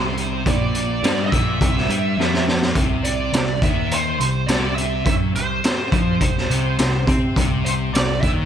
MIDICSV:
0, 0, Header, 1, 5, 480
1, 0, Start_track
1, 0, Tempo, 575264
1, 387, Time_signature, 4, 2, 24, 8
1, 7053, End_track
2, 0, Start_track
2, 0, Title_t, "Lead electric guitar"
2, 0, Program_c, 0, 29
2, 0, Note_on_c, 0, 72, 76
2, 388, Note_on_c, 0, 74, 91
2, 399, Note_off_c, 0, 72, 0
2, 1049, Note_off_c, 0, 74, 0
2, 1053, Note_on_c, 0, 75, 61
2, 1095, Note_off_c, 0, 75, 0
2, 1098, Note_on_c, 0, 76, 84
2, 2025, Note_off_c, 0, 76, 0
2, 2536, Note_on_c, 0, 74, 98
2, 3029, Note_off_c, 0, 74, 0
2, 3032, Note_on_c, 0, 76, 89
2, 3272, Note_off_c, 0, 76, 0
2, 3273, Note_on_c, 0, 72, 84
2, 3491, Note_off_c, 0, 72, 0
2, 3501, Note_on_c, 0, 72, 77
2, 3726, Note_on_c, 0, 74, 85
2, 3747, Note_off_c, 0, 72, 0
2, 3964, Note_off_c, 0, 74, 0
2, 3967, Note_on_c, 0, 76, 79
2, 4203, Note_off_c, 0, 76, 0
2, 4213, Note_on_c, 0, 76, 96
2, 4279, Note_off_c, 0, 76, 0
2, 4468, Note_on_c, 0, 72, 77
2, 5875, Note_off_c, 0, 72, 0
2, 6382, Note_on_c, 0, 72, 76
2, 6448, Note_off_c, 0, 72, 0
2, 6624, Note_on_c, 0, 74, 92
2, 6849, Note_off_c, 0, 74, 0
2, 6852, Note_on_c, 0, 76, 95
2, 6919, Note_off_c, 0, 76, 0
2, 7053, End_track
3, 0, Start_track
3, 0, Title_t, "Distorted electric guitar"
3, 0, Program_c, 1, 30
3, 0, Note_on_c, 1, 48, 108
3, 377, Note_off_c, 1, 48, 0
3, 380, Note_on_c, 1, 46, 97
3, 855, Note_off_c, 1, 46, 0
3, 856, Note_on_c, 1, 55, 98
3, 1092, Note_off_c, 1, 55, 0
3, 1104, Note_on_c, 1, 46, 97
3, 1336, Note_off_c, 1, 46, 0
3, 1344, Note_on_c, 1, 48, 96
3, 1573, Note_on_c, 1, 55, 88
3, 1576, Note_off_c, 1, 48, 0
3, 1810, Note_off_c, 1, 55, 0
3, 1818, Note_on_c, 1, 53, 101
3, 2291, Note_off_c, 1, 53, 0
3, 2300, Note_on_c, 1, 48, 102
3, 2772, Note_off_c, 1, 48, 0
3, 2784, Note_on_c, 1, 48, 69
3, 2973, Note_off_c, 1, 48, 0
3, 3025, Note_on_c, 1, 51, 106
3, 3494, Note_off_c, 1, 51, 0
3, 3507, Note_on_c, 1, 48, 68
3, 3695, Note_off_c, 1, 48, 0
3, 3737, Note_on_c, 1, 48, 103
3, 4211, Note_off_c, 1, 48, 0
3, 4220, Note_on_c, 1, 54, 104
3, 4452, Note_off_c, 1, 54, 0
3, 4463, Note_on_c, 1, 48, 65
3, 4653, Note_off_c, 1, 48, 0
3, 4940, Note_on_c, 1, 53, 102
3, 5172, Note_off_c, 1, 53, 0
3, 5175, Note_on_c, 1, 48, 73
3, 5370, Note_off_c, 1, 48, 0
3, 5420, Note_on_c, 1, 48, 102
3, 5654, Note_off_c, 1, 48, 0
3, 5665, Note_on_c, 1, 48, 73
3, 5856, Note_off_c, 1, 48, 0
3, 5905, Note_on_c, 1, 60, 98
3, 6138, Note_off_c, 1, 60, 0
3, 6147, Note_on_c, 1, 48, 107
3, 6621, Note_off_c, 1, 48, 0
3, 6640, Note_on_c, 1, 48, 76
3, 6827, Note_off_c, 1, 48, 0
3, 6872, Note_on_c, 1, 51, 102
3, 7053, Note_off_c, 1, 51, 0
3, 7053, End_track
4, 0, Start_track
4, 0, Title_t, "Picked electric bass"
4, 0, Program_c, 2, 34
4, 0, Note_on_c, 2, 36, 85
4, 355, Note_off_c, 2, 36, 0
4, 383, Note_on_c, 2, 34, 82
4, 830, Note_off_c, 2, 34, 0
4, 859, Note_on_c, 2, 43, 95
4, 1084, Note_off_c, 2, 43, 0
4, 1107, Note_on_c, 2, 34, 86
4, 1328, Note_off_c, 2, 34, 0
4, 1341, Note_on_c, 2, 36, 87
4, 1565, Note_off_c, 2, 36, 0
4, 1575, Note_on_c, 2, 43, 81
4, 1801, Note_off_c, 2, 43, 0
4, 1809, Note_on_c, 2, 41, 87
4, 2261, Note_off_c, 2, 41, 0
4, 2299, Note_on_c, 2, 36, 82
4, 2745, Note_off_c, 2, 36, 0
4, 2774, Note_on_c, 2, 36, 76
4, 2999, Note_off_c, 2, 36, 0
4, 3019, Note_on_c, 2, 39, 83
4, 3465, Note_off_c, 2, 39, 0
4, 3495, Note_on_c, 2, 36, 68
4, 3720, Note_off_c, 2, 36, 0
4, 3736, Note_on_c, 2, 36, 83
4, 4184, Note_off_c, 2, 36, 0
4, 4220, Note_on_c, 2, 42, 92
4, 4443, Note_off_c, 2, 42, 0
4, 4455, Note_on_c, 2, 36, 76
4, 4681, Note_off_c, 2, 36, 0
4, 4941, Note_on_c, 2, 41, 80
4, 5164, Note_off_c, 2, 41, 0
4, 5180, Note_on_c, 2, 36, 64
4, 5404, Note_off_c, 2, 36, 0
4, 5421, Note_on_c, 2, 36, 84
4, 5645, Note_off_c, 2, 36, 0
4, 5661, Note_on_c, 2, 36, 77
4, 5886, Note_off_c, 2, 36, 0
4, 5900, Note_on_c, 2, 48, 97
4, 6125, Note_off_c, 2, 48, 0
4, 6144, Note_on_c, 2, 36, 88
4, 6593, Note_off_c, 2, 36, 0
4, 6613, Note_on_c, 2, 36, 74
4, 6844, Note_off_c, 2, 36, 0
4, 6865, Note_on_c, 2, 39, 79
4, 7053, Note_off_c, 2, 39, 0
4, 7053, End_track
5, 0, Start_track
5, 0, Title_t, "Drums"
5, 145, Note_on_c, 9, 42, 65
5, 228, Note_off_c, 9, 42, 0
5, 384, Note_on_c, 9, 36, 96
5, 387, Note_on_c, 9, 42, 75
5, 468, Note_off_c, 9, 36, 0
5, 471, Note_off_c, 9, 42, 0
5, 622, Note_on_c, 9, 42, 54
5, 705, Note_off_c, 9, 42, 0
5, 866, Note_on_c, 9, 42, 88
5, 876, Note_on_c, 9, 38, 116
5, 949, Note_off_c, 9, 42, 0
5, 960, Note_off_c, 9, 38, 0
5, 1104, Note_on_c, 9, 36, 95
5, 1109, Note_on_c, 9, 42, 62
5, 1187, Note_off_c, 9, 36, 0
5, 1193, Note_off_c, 9, 42, 0
5, 1343, Note_on_c, 9, 36, 106
5, 1348, Note_on_c, 9, 42, 90
5, 1427, Note_off_c, 9, 36, 0
5, 1431, Note_off_c, 9, 42, 0
5, 1480, Note_on_c, 9, 38, 26
5, 1564, Note_off_c, 9, 38, 0
5, 1585, Note_on_c, 9, 42, 56
5, 1668, Note_off_c, 9, 42, 0
5, 1836, Note_on_c, 9, 38, 60
5, 1919, Note_off_c, 9, 38, 0
5, 1952, Note_on_c, 9, 38, 62
5, 2036, Note_off_c, 9, 38, 0
5, 2071, Note_on_c, 9, 38, 85
5, 2155, Note_off_c, 9, 38, 0
5, 2188, Note_on_c, 9, 38, 83
5, 2272, Note_off_c, 9, 38, 0
5, 2297, Note_on_c, 9, 42, 77
5, 2298, Note_on_c, 9, 36, 100
5, 2380, Note_off_c, 9, 42, 0
5, 2382, Note_off_c, 9, 36, 0
5, 2540, Note_on_c, 9, 42, 64
5, 2624, Note_off_c, 9, 42, 0
5, 2781, Note_on_c, 9, 42, 104
5, 2792, Note_on_c, 9, 38, 116
5, 2865, Note_off_c, 9, 42, 0
5, 2875, Note_off_c, 9, 38, 0
5, 3021, Note_on_c, 9, 36, 93
5, 3026, Note_on_c, 9, 42, 65
5, 3104, Note_off_c, 9, 36, 0
5, 3110, Note_off_c, 9, 42, 0
5, 3264, Note_on_c, 9, 42, 88
5, 3348, Note_off_c, 9, 42, 0
5, 3507, Note_on_c, 9, 42, 60
5, 3591, Note_off_c, 9, 42, 0
5, 3741, Note_on_c, 9, 42, 88
5, 3751, Note_on_c, 9, 38, 98
5, 3824, Note_off_c, 9, 42, 0
5, 3835, Note_off_c, 9, 38, 0
5, 3987, Note_on_c, 9, 42, 68
5, 4070, Note_off_c, 9, 42, 0
5, 4220, Note_on_c, 9, 36, 101
5, 4223, Note_on_c, 9, 42, 78
5, 4303, Note_off_c, 9, 36, 0
5, 4306, Note_off_c, 9, 42, 0
5, 4466, Note_on_c, 9, 42, 54
5, 4550, Note_off_c, 9, 42, 0
5, 4704, Note_on_c, 9, 42, 90
5, 4715, Note_on_c, 9, 38, 113
5, 4788, Note_off_c, 9, 42, 0
5, 4799, Note_off_c, 9, 38, 0
5, 4942, Note_on_c, 9, 36, 97
5, 4947, Note_on_c, 9, 42, 56
5, 5025, Note_off_c, 9, 36, 0
5, 5030, Note_off_c, 9, 42, 0
5, 5181, Note_on_c, 9, 36, 90
5, 5181, Note_on_c, 9, 42, 82
5, 5264, Note_off_c, 9, 36, 0
5, 5264, Note_off_c, 9, 42, 0
5, 5320, Note_on_c, 9, 38, 30
5, 5404, Note_off_c, 9, 38, 0
5, 5430, Note_on_c, 9, 42, 58
5, 5513, Note_off_c, 9, 42, 0
5, 5661, Note_on_c, 9, 42, 88
5, 5672, Note_on_c, 9, 38, 107
5, 5745, Note_off_c, 9, 42, 0
5, 5755, Note_off_c, 9, 38, 0
5, 5903, Note_on_c, 9, 36, 102
5, 5908, Note_on_c, 9, 42, 70
5, 5986, Note_off_c, 9, 36, 0
5, 5992, Note_off_c, 9, 42, 0
5, 6144, Note_on_c, 9, 36, 90
5, 6149, Note_on_c, 9, 42, 86
5, 6228, Note_off_c, 9, 36, 0
5, 6233, Note_off_c, 9, 42, 0
5, 6390, Note_on_c, 9, 42, 61
5, 6473, Note_off_c, 9, 42, 0
5, 6632, Note_on_c, 9, 42, 98
5, 6642, Note_on_c, 9, 38, 116
5, 6715, Note_off_c, 9, 42, 0
5, 6726, Note_off_c, 9, 38, 0
5, 6865, Note_on_c, 9, 36, 91
5, 6868, Note_on_c, 9, 42, 67
5, 6949, Note_off_c, 9, 36, 0
5, 6951, Note_off_c, 9, 42, 0
5, 7053, End_track
0, 0, End_of_file